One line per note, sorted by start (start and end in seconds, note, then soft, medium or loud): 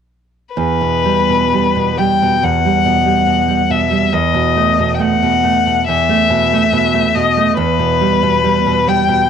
0.55 2.39 E2 soft
0.55 2.00 B4 medium
0.81 1.19 B2 soft
1.05 1.43 G3 soft
1.29 1.67 B2 soft
1.53 1.90 G3 soft
1.76 2.12 B2 soft
1.98 2.35 G3 soft
1.98 2.45 G5 soft
2.22 2.57 B2 soft
2.43 4.09 E2 soft
2.43 3.72 F#5 medium
2.65 2.99 G3 soft
2.86 3.19 B2 soft
3.06 3.40 G3 soft
3.26 3.61 B2 soft
3.48 3.83 G3 soft
3.70 4.05 B2 soft
3.70 4.14 E5 soft
3.91 4.13 G3 soft
4.13 5.84 E2 soft
4.13 4.96 D#5 medium
4.34 4.70 B2 soft
4.56 4.92 A3 soft
4.79 5.14 B2 soft
4.94 5.03 G5 soft
4.99 5.35 A3 soft
4.99 5.88 F#5 medium
5.23 5.58 B2 soft
5.44 5.79 A3 soft
5.66 6.01 B2 soft
5.88 7.53 E2 soft
5.88 7.17 E5 medium
6.09 6.43 A3 soft
6.30 6.64 B2 soft
6.53 6.86 A3 soft
6.72 7.06 B2 soft
6.94 7.27 A3 soft
7.15 7.49 B2 soft
7.15 7.57 D#5 medium
7.37 7.58 A3 soft
7.57 9.28 E2 medium
7.57 8.90 B4 medium
7.79 8.14 B2 soft
8.01 8.36 G3 soft
8.23 8.58 B2 soft
8.44 8.79 G3 soft
8.66 9.01 B2 soft
8.87 9.23 G3 soft
8.87 9.30 G5 medium
9.08 9.29 B2 soft